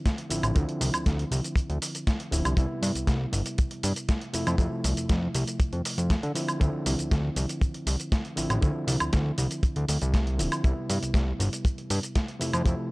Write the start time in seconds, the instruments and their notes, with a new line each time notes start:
Already playing: reed electric piano D3 F3 C4 E4
0.06 kick, snare, closed hi-hat, shaker
0.18 closed hi-hat
0.30 analog synth bass A1, reed electric piano D3 F3 C4 E4, open hi-hat, shaker
0.43 analog synth bass A1, closed hi-hat, high woodblock, shaker
0.55 analog synth bass D2, reed electric piano D3 F3 C4 E4, kick, closed hi-hat, shaker
0.69 closed hi-hat
0.81 analog synth bass C2, open hi-hat, shaker
0.94 analog synth bass D2, closed hi-hat, high woodblock, shaker
1.06 analog synth bass D2, kick, snare, closed hi-hat, shaker
1.19 closed hi-hat
1.31 analog synth bass C2, open hi-hat, shaker
1.44 closed hi-hat, shaker
1.56 kick, closed hi-hat, shaker
1.70 analog synth bass D2, closed hi-hat
1.82 open hi-hat, shaker
1.95 closed hi-hat, shaker
2.07 kick, snare, closed hi-hat, shaker
2.20 closed hi-hat
2.31 analog synth bass D1, reed electric piano D3 F3 C4 E4, open hi-hat, shaker
2.45 analog synth bass C2, closed hi-hat, high woodblock, shaker
2.56 analog synth bass C2, reed electric piano C3 G3 B3 E4, kick, closed hi-hat, shaker
2.82 analog synth bass G2, open hi-hat, shaker
2.95 analog synth bass C2, closed hi-hat, shaker
3.07 analog synth bass C2, kick, snare, closed hi-hat, shaker
3.33 analog synth bass G1, open hi-hat, shaker
3.46 closed hi-hat, shaker
3.58 kick, closed hi-hat, shaker
3.71 closed hi-hat
3.83 analog synth bass G2, open hi-hat, shaker
3.96 closed hi-hat, shaker
4.09 kick, snare, closed hi-hat, shaker
4.21 closed hi-hat
4.33 analog synth bass F2, reed electric piano C3 F3 A3 E4, open hi-hat, shaker
4.47 analog synth bass F2, closed hi-hat, high woodblock, shaker
4.58 analog synth bass F2, reed electric piano C3 F3 A3 E4, kick, closed hi-hat, shaker
4.84 analog synth bass C2, open hi-hat, shaker
4.97 analog synth bass F2, closed hi-hat, shaker
5.09 analog synth bass F2, kick, snare, closed hi-hat, shaker
5.35 analog synth bass C2, open hi-hat, shaker
5.47 closed hi-hat, shaker
5.60 kick, closed hi-hat, shaker
5.73 analog synth bass F2, closed hi-hat
5.85 open hi-hat, shaker
5.98 analog synth bass F2, closed hi-hat, shaker
6.10 kick, snare, closed hi-hat, shaker
6.23 analog synth bass D3, closed hi-hat
6.35 reed electric piano D3 F3 C4 E4, open hi-hat, shaker
6.48 closed hi-hat, high woodblock, shaker
6.59 analog synth bass D2, reed electric piano D3 F3 C4 E4, kick, closed hi-hat, shaker
6.86 analog synth bass C2, open hi-hat, shaker
6.99 analog synth bass D2, closed hi-hat, shaker
7.11 analog synth bass D2, kick, snare, closed hi-hat, shaker
7.36 analog synth bass C2, open hi-hat, shaker
7.49 closed hi-hat, shaker
7.61 kick, closed hi-hat, shaker
7.74 closed hi-hat
7.87 analog synth bass C2, open hi-hat, shaker
8.00 closed hi-hat, shaker
8.12 kick, snare, closed hi-hat, shaker
8.25 closed hi-hat
8.36 analog synth bass A1, reed electric piano D3 F3 C4 E4, open hi-hat, shaker
8.50 analog synth bass A1, closed hi-hat, high woodblock, shaker
8.61 analog synth bass D2, reed electric piano D3 F3 C4 E4, kick, closed hi-hat, shaker
8.87 analog synth bass C2, open hi-hat, shaker
9.00 analog synth bass D2, closed hi-hat, high woodblock, shaker
9.13 analog synth bass D2, kick, snare, closed hi-hat, shaker
9.38 analog synth bass C2, open hi-hat, shaker
9.51 closed hi-hat, shaker
9.63 kick, closed hi-hat, shaker
9.76 analog synth bass D2, closed hi-hat
9.89 analog synth bass D2, open hi-hat, shaker
10.02 analog synth bass C2, closed hi-hat, shaker
10.14 kick, snare, closed hi-hat, shaker
10.27 closed hi-hat
10.38 analog synth bass D1, reed electric piano D3 F3 C4 E4, open hi-hat, shaker
10.52 closed hi-hat, high woodblock, shaker
10.63 analog synth bass C2, reed electric piano C3 G3 B3 E4, kick, closed hi-hat, shaker
10.90 analog synth bass G2, open hi-hat, shaker
11.02 analog synth bass C2, closed hi-hat, shaker
11.14 analog synth bass C2, kick, snare, closed hi-hat, shaker
11.40 analog synth bass G1, open hi-hat, shaker
11.53 closed hi-hat, shaker
11.65 kick, closed hi-hat, shaker
11.78 closed hi-hat
11.90 analog synth bass G2, open hi-hat, shaker
12.03 closed hi-hat, shaker
12.15 kick, snare, closed hi-hat, shaker
12.28 closed hi-hat
12.40 analog synth bass F2, reed electric piano C3 F3 A3 E4, open hi-hat, shaker
12.53 analog synth bass F2, closed hi-hat, high woodblock, shaker
12.65 analog synth bass F2, reed electric piano C3 F3 A3 E4, kick, closed hi-hat, shaker